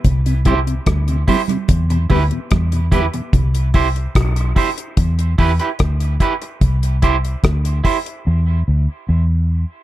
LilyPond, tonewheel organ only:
\new Staff \with { instrumentName = "Tonewheel organ" } { \clef bass \time 4/4 \key c \major \tempo 4 = 73 << { r8 <g c' e'>8 r8 <g c' e'>8 r8 <g b e'>8 r8 <g b e'>8 | r1 | r1 | } \\ { r16 c16 r16 c16 r16 c16 r16 c16 r16 <e, b,>16 r16 <e, b,>16 r16 <e, b,>16 r16 <e, b,>16 | r1 | r1 | } >> }